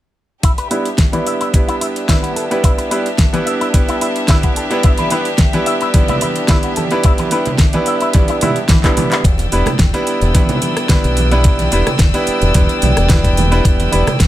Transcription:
0.43 string section D4 G4 E5, clean electric guitar E4, kick, closed hi-hat
0.58 clean electric guitar B4, closed hi-hat
0.70 grand piano G3 B3 D4 E4 B4, clean electric guitar E4, open hi-hat
0.85 closed hi-hat
0.98 kick, snare, closed hi-hat
1.12 clean electric guitar E3, grand piano G3 B3 D4 E4 B4, closed hi-hat
1.26 clean electric guitar E5, open hi-hat
1.41 clean electric guitar E4, closed hi-hat
1.53 grand piano G3 B3 D4 E4 B4, kick, closed hi-hat
1.68 clean electric guitar E4, closed hi-hat
1.81 clean electric guitar E4, open hi-hat
1.96 closed hi-hat
2.08 grand piano G3 B3 D4 E4 B4, clean electric guitar E4, kick, snare, closed hi-hat
2.23 clean electric guitar B3, closed hi-hat
2.36 clean electric guitar A4, open hi-hat
2.50 grand piano G3 B3 D4 E4 B4, closed hi-hat
2.64 clean electric guitar E4, kick, closed hi-hat
2.78 clean electric guitar B4, closed hi-hat
2.91 grand piano G3 B3 D4 E4 B4, clean electric guitar E4, open hi-hat
3.06 closed hi-hat
3.18 kick, snare, closed hi-hat
3.33 clean electric guitar E3, grand piano G3 B3 D4 E4 B4, closed hi-hat
3.46 clean electric guitar E5, open hi-hat
3.61 clean electric guitar E4, closed hi-hat
3.74 grand piano G3 B3 D4 E4 B4, kick, closed hi-hat
3.89 clean electric guitar E4, closed hi-hat
4.01 clean electric guitar E4, open hi-hat
4.16 closed hi-hat
4.28 grand piano G3 B3 D4 E4 B4, clean electric guitar E4, kick, snare, closed hi-hat
4.43 clean electric guitar B3, kick, closed hi-hat
4.56 clean electric guitar A4, open hi-hat
4.70 grand piano G3 B3 D4 E4 B4, closed hi-hat
4.83 clean electric guitar E4, kick, closed hi-hat
4.98 clean electric guitar B4, closed hi-hat, high conga
5.10 grand piano G3 B3 D4 E4 B4, clean electric guitar E4, open hi-hat
5.25 closed hi-hat
5.38 kick, snare, closed hi-hat
5.53 clean electric guitar E3, grand piano G3 B3 D4 E4 B4, closed hi-hat
5.66 clean electric guitar E5, open hi-hat
5.81 clean electric guitar E4, closed hi-hat
5.94 grand piano G3 B3 D4 E4 B4, kick, closed hi-hat, high conga
6.08 clean electric guitar E4, closed hi-hat, low conga
6.21 clean electric guitar E4, open hi-hat, high conga
6.36 closed hi-hat
6.48 grand piano G3 B3 D4 E4 B4, clean electric guitar E4, kick, snare, closed hi-hat
6.63 clean electric guitar B3, closed hi-hat
6.76 clean electric guitar A4, open hi-hat, high conga
6.91 grand piano G3 B3 D4 E4 B4, closed hi-hat
7.03 clean electric guitar E4, kick, closed hi-hat
7.18 clean electric guitar B4, closed hi-hat, high conga
7.31 grand piano G3 B3 D4 E4 B4, clean electric guitar E4, open hi-hat
7.46 closed hi-hat, low conga
7.58 kick, snare, closed hi-hat
7.73 clean electric guitar E3, grand piano G3 B3 D4 E4 B4, closed hi-hat
7.86 clean electric guitar E5, open hi-hat
8.01 clean electric guitar E4, closed hi-hat
8.13 grand piano G3 B3 D4 E4 B4, kick, closed hi-hat, high conga
8.28 clean electric guitar E4, closed hi-hat
8.41 grand piano G3 B3 D4 E4 E5, clean electric guitar E4, open hi-hat, high conga, low conga
8.56 closed hi-hat
8.69 clean electric guitar E3, kick, snare, closed hi-hat
8.83 grand piano G3 B3 D4 E4 B4, clean electric guitar E4, kick, clap, closed hi-hat
8.97 clean electric guitar E3, open hi-hat, high conga, low conga
9.12 clean electric guitar E4, clap, closed hi-hat
9.24 fingered electric bass E1, string section D5 G5 E6, kick, closed hi-hat
9.38 closed hi-hat, high conga
9.52 fingered electric bass E1, grand piano G3 B3 D4 E4 B4, open hi-hat
9.66 cross-stick, closed hi-hat, low conga
9.79 fingered electric bass E1, kick, snare, closed hi-hat
9.93 grand piano G3 B3 D4 E4 B4, closed hi-hat
10.07 open hi-hat
10.21 fingered electric bass E1, closed hi-hat
10.34 grand piano G3 B3 D4 E4 B4, kick, closed hi-hat, high conga
10.49 closed hi-hat, low conga
10.62 open hi-hat, high conga
10.77 cross-stick, closed hi-hat
10.89 grand piano G3 B3 D4 E4 B4, kick, snare, closed hi-hat
11.04 fingered electric bass B1, closed hi-hat
11.17 open hi-hat, high conga
11.31 grand piano G3 B3 D4 E4 B4, closed hi-hat
11.44 kick, closed hi-hat
11.59 closed hi-hat, high conga
11.72 fingered electric bass E1, grand piano G3 B3 D4 E4 B4, open hi-hat
11.87 cross-stick, closed hi-hat, low conga
11.99 fingered electric bass E1, kick, snare, closed hi-hat
12.14 grand piano G3 B3 D4 E4 B4, closed hi-hat
12.27 muted fingered electric bass stroke, open hi-hat
12.42 fingered electric bass E1, closed hi-hat
12.54 fingered electric bass E1, grand piano G3 B3 D4 E4 B4, kick, closed hi-hat, high conga
12.69 closed hi-hat
12.82 fingered electric bass B1, open hi-hat, high conga, low conga
12.97 fingered electric bass E1, cross-stick, closed hi-hat
13.09 grand piano G3 B3 D4 E4 B4, kick, snare, closed hi-hat
13.24 kick, closed hi-hat
13.37 open hi-hat, high conga, low conga
13.51 grand piano G3 B3 D4 E4 B4, closed hi-hat
13.65 fingered electric bass E1, kick, closed hi-hat
13.80 closed hi-hat, high conga
13.92 fingered electric bass E1, grand piano G3 B3 D4 E4 B4, open hi-hat
14.07 cross-stick, closed hi-hat, low conga
14.20 fingered electric bass E1, kick, snare, closed hi-hat

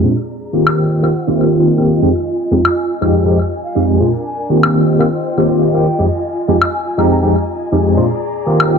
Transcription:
0.03 tine electric piano A#2 G#3 C4 D4 F4, string section G#4 D5 A#5
0.53 tine electric piano D#3 A#3 C4 F4 G4
0.67 high woodblock
0.78 string section F4 C5 D#5 G5, flute G5
1.02 tine electric piano D#3 A#3 C4 F4 G4
1.27 tine electric piano D#3 A#3 C4 F4 G4
1.77 tine electric piano D#3 A#3 C4 F4 G4
2.02 tine electric piano F2 G#3 C4 D#4 G4, string section G#5
2.51 tine electric piano F2 G#3 C4 D#4 G4
2.65 high woodblock
2.76 flute G#5
2.90 flute G#5
3.01 tine electric piano F2 G#3 C4 D#4 G4
3.25 tine electric piano F2 G#3 C4 D#4 G4
3.64 flute F5
3.75 tine electric piano F2 G#3 C4 D#4 G4
4.00 tine electric piano A#2 G#3 C4 D4 F4, string section D4 A#4
4.25 flute G#5
4.49 tine electric piano D#3 A#3 C4 F4 G4
4.63 high woodblock
4.75 string section F4 C5 D#5 G5
4.99 tine electric piano D#3 A#3 C4 F4 G4
5.37 tine electric piano D#3 A#3 C4 F4 G4
5.73 tine electric piano D#3 A#3 C4 F4 G4, flute G5
5.98 tine electric piano F2 G#3 C4 D#4 G4, string section G#5
6.48 tine electric piano F2 G#3 C4 D#4 G4
6.62 high woodblock
6.73 flute G#5
6.87 flute G#5
6.97 tine electric piano F2 G#3 C4 D#4 G4, flute A#5
7.11 flute A#5
7.22 tine electric piano F2 G#3 C4 D#4 G4
7.72 tine electric piano F2 G#3 C4 D#4 G4
7.97 tine electric piano A#2 G#3 C4 D4 F4, string section G#4 D5 A#5
8.46 tine electric piano D#3 A#3 C4 F4 G4
8.60 high woodblock
8.71 string section F4 C5 D#5 G5, flute G5

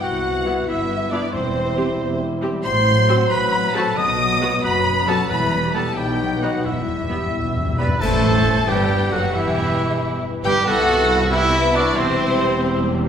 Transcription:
Already playing: harp G3 B3 E4 B4 E5 G5 B5
0.01 cello section C2, double bass section C2, harp C3, french horn section B3 E4, clarinet F#4, violin section F#5, oboe F#5
0.14 harp C4
0.25 harp G3
0.36 harp B4
0.46 viola section B3 E4, harp E5
0.58 harp B5
0.67 double bass section G1, cello section G2, french horn section B3 E4, clarinet E4, harp G4, violin section E5, oboe E5
0.79 harp B4
0.90 harp G3
1.00 harp C4
1.11 harp G3, viola section B3 E4, clarinet D4, violin section D5, oboe D5
1.22 harp C4
1.32 double bass section E1, cello section E2, timpani E2, harp E3, french horn section G3 E4, clarinet C4, oboe C5, violin section C5
1.44 harp G3
1.66 harp G4
1.77 viola section C4 G4
1.87 harp G5
1.99 double bass section E1, cello section E2, harp E5
2.09 harp G4
2.20 harp E4
2.31 harp G3
2.42 viola section C4 G4, harp E4
2.53 harp G3
2.63 double bass section A1, harp A2, cello section A2, french horn section F#3 F#4, clarinet C5, violin section C6, oboe C6
2.75 harp A3
2.86 harp F#3
3.08 viola section C4 F#4, harp F#5
3.30 double bass section A1, cello section A2, harp F#4, clarinet B4, violin section B5, oboe B5
3.42 harp C5
3.52 harp F#3
3.64 harp A3
3.75 harp F#3, viola section C4 F#4, clarinet A4, violin section A5, oboe A5
3.87 harp A3
3.97 double bass section B1, timpani B2, cello section B2, harp B2, french horn section F#3 F#4, clarinet D#5, violin section D#6, oboe D#6
4.09 harp B3
4.20 harp F#3
4.31 harp B4
4.42 viola section B3 F#4, harp F#5
4.53 harp B5
4.64 double bass section F#1, cello section F#2, french horn section F#3 F#4, harp F#4, clarinet B4, oboe B5, violin section B5
4.75 harp B4
4.86 harp F#3
4.97 harp B3
5.07 harp F#3, viola section B3 F#4, clarinet A4, violin section A5, oboe A5
5.19 harp B3
5.29 double bass section E1, cello section E2, timpani E2, harp E3, french horn section G3 E4, clarinet B4, violin section B5, oboe B5
5.41 harp G3
5.64 harp G4
5.74 viola section B3 G4, clarinet A4, violin section A5, oboe A5, harp B5
5.86 harp G5
5.96 double bass section B1, cello section B2, harp B2, french horn section F#3 D#4, clarinet G4, violin section G5, oboe G5
6.09 harp B3
6.20 harp F#3
6.32 harp B4
6.41 viola section B3 D#4, clarinet F#4, harp D#5, violin section F#5, oboe F#5
6.54 harp B5
6.64 double bass section E1, cello section E2, timpani E2, harp E3, french horn section G3 E4, clarinet E4, violin section E5, oboe E5
6.73 timpani E2
6.77 timpani E2, harp G3
6.88 timpani E2, harp E4
6.96 timpani E2, harp G4
7.03 timpani E2
7.10 timpani E2, viola section B3 G4, harp B5
7.18 timpani E2, harp G5
7.27 timpani E2
7.32 double bass section B1, timpani E2, cello section B2, harp E5
7.42 timpani E2, harp G4
7.49 timpani E2
7.55 timpani E2, harp E4
7.65 timpani E2, harp G3
7.72 timpani E2
7.78 timpani E2, viola section B3 G4, harp E4, trumpet B4, violin section B4 B5, flute D5, oboe B5
7.88 timpani E2, harp G3
8.00 double bass section A1, cello section A2, harp E3, french horn section A3, viola section A3, violin section A4 A5, trumpet A4, flute C5, oboe A5, concert bass drum, crash
8.23 harp G3
8.45 harp E4
8.67 double bass section G1, cello section G2, viola section G3, french horn section G3, violin section G4 G5, trumpet G4, harp B4, flute B4, oboe G5
8.90 harp G4
9.11 double bass section F#1, cello section F#2, french horn section F#3, viola section F#3, violin section F#4 F#5, trumpet F#4, flute A4, harp B4, oboe F#5
9.33 double bass section E1, cello section E2, harp G2, french horn section E3, viola section E3, trumpet E4, violin section E4 E5, flute G4, oboe E5
9.56 harp E3
9.78 harp G3
10.00 harp E4
10.22 harp B4
10.43 double bass section G1, cello section G2, french horn section G3, viola section G3, harp E4, violin section G4 G5, trumpet G4, flute B4, oboe G5
10.65 cello section C2, double bass section C2, harp C3, french horn section B3 E4, viola section B3 E4, trumpet F#4, violin section F#4 F#5, flute A4, oboe F#5
10.87 harp C4
11.09 harp G3
11.31 french horn section B3 E4, trumpet E4, violin section E4 E5, harp E4, flute G4, oboe E5
11.53 harp B4
11.74 trumpet D4, violin section D4 D5, harp E4, flute F#4, oboe D5
11.95 double bass section E1, cello section E2, harp E2, viola section G3 C4, violin section C4 C5, trumpet C4, french horn section C4 G4, flute E4, oboe C5
12.19 harp E3
12.41 harp G3
12.62 harp E4
12.85 harp C5

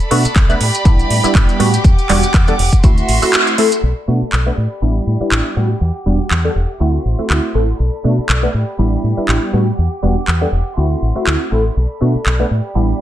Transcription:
Already playing: violin section A4 D5 B5
0.00 closed hi-hat
0.11 fingered electric bass B2, analog polysynth A3 B3 D4 F#4, open hi-hat
0.25 muted fingered electric bass stroke, closed hi-hat, maracas
0.36 fingered electric bass B1, kick, clap, closed hi-hat, maracas
0.49 analog polysynth A3 B3 D4 B4, closed hi-hat, maracas
0.60 fingered electric bass A2, violin section G4, open hi-hat
0.75 closed hi-hat, maracas
0.85 fingered electric bass A1, analog polysynth G3 B3 D4 E4, kick, closed hi-hat, maracas
0.99 closed hi-hat, maracas
1.10 fingered electric bass A2, open hi-hat
1.24 analog polysynth G3 B3 D4 E4, muted fingered electric bass stroke, closed hi-hat, maracas
1.35 fingered electric bass A1, kick, clap, closed hi-hat, maracas
1.49 closed hi-hat, maracas
1.59 fingered electric bass A2, analog polysynth G3 B3 D4 F#4, open hi-hat
1.74 closed hi-hat, maracas
1.84 fingered electric bass E2, violin section F#5 D6, kick, closed hi-hat, maracas
1.99 closed hi-hat, maracas
2.09 fingered electric bass E1, analog polysynth G3 B3 D4 F#4, clap, open hi-hat
2.23 muted fingered electric bass stroke, closed hi-hat, maracas
2.34 fingered electric bass E2, kick, clap, closed hi-hat, maracas
2.47 analog polysynth G3 B3 D4 A4, closed hi-hat, maracas
2.59 fingered electric bass E1, open hi-hat
2.73 kick, closed hi-hat, maracas
2.83 fingered electric bass D2, analog polysynth A3 C4 E4 F#4, violin section F#4 E5 C6, kick, closed hi-hat, maracas
2.98 closed hi-hat, maracas
3.09 fingered electric bass A1, open hi-hat
3.22 analog polysynth A3 C4 E4 F#4, open hi-hat, maracas
3.33 clap, closed hi-hat, maracas
3.47 closed hi-hat, maracas
3.58 analog polysynth A3 C4 E4 A4, open hi-hat
3.72 closed hi-hat, maracas
3.83 fingered electric bass B1, violin section A4 D5 B5
4.07 fingered electric bass B2, analog polysynth A3 B3 D4 F#4
4.22 muted fingered electric bass stroke
4.33 fingered electric bass B1, clap
4.46 analog polysynth A3 B3 D4 B4
4.57 fingered electric bass A2, violin section G4
4.82 fingered electric bass A1, analog polysynth G3 B3 D4 E4
5.07 fingered electric bass A2
5.20 analog polysynth G3 B3 D4 E4, muted fingered electric bass stroke
5.31 fingered electric bass A1, clap
5.56 fingered electric bass A2, analog polysynth G3 B3 D4 F#4
5.81 fingered electric bass E2, violin section F#5 D6
6.06 fingered electric bass E1, analog polysynth G3 B3 D4 F#4
6.31 fingered electric bass E2, clap
6.44 analog polysynth G3 B3 D4 A4
6.55 fingered electric bass E1
6.80 fingered electric bass D2, analog polysynth A3 C4 E4 F#4, violin section F#4 E5 C6
7.05 fingered electric bass A1
7.19 analog polysynth A3 C4 E4 F#4
7.30 fingered electric bass D2, clap
7.54 fingered electric bass A1, analog polysynth A3 C4 E4 A4
7.79 fingered electric bass B1, violin section A4 D5 B5
8.04 fingered electric bass B2, analog polysynth A3 B3 D4 F#4
8.18 muted fingered electric bass stroke
8.29 fingered electric bass B1, clap
8.43 analog polysynth A3 B3 D4 B4
8.54 fingered electric bass A2, violin section G4
8.78 fingered electric bass A1, analog polysynth G3 B3 D4 E4
9.04 fingered electric bass A2
9.17 analog polysynth G3 B3 D4 E4, muted fingered electric bass stroke
9.28 fingered electric bass A1, clap
9.53 fingered electric bass A2, analog polysynth G3 B3 D4 F#4
9.78 fingered electric bass E2, violin section F#5 D6
10.02 fingered electric bass E1, analog polysynth G3 B3 D4 F#4
10.17 muted fingered electric bass stroke
10.28 fingered electric bass E2, clap
10.41 analog polysynth G3 B3 D4 A4
10.52 fingered electric bass E1
10.77 fingered electric bass D2, analog polysynth A3 C4 E4 F#4, violin section F#4 E5 C6
11.02 fingered electric bass A1
11.15 analog polysynth A3 C4 E4 F#4
11.27 fingered electric bass D2, clap
11.51 fingered electric bass A1, analog polysynth A3 C4 E4 A4
11.76 fingered electric bass B1, violin section A4 D5 B5
12.01 fingered electric bass B2, analog polysynth A3 B3 D4 F#4
12.15 muted fingered electric bass stroke
12.26 fingered electric bass B1, clap
12.39 analog polysynth A3 B3 D4 B4
12.51 fingered electric bass A2, violin section G4 B5
12.75 fingered electric bass A1, analog polysynth G3 B3 D4 E4

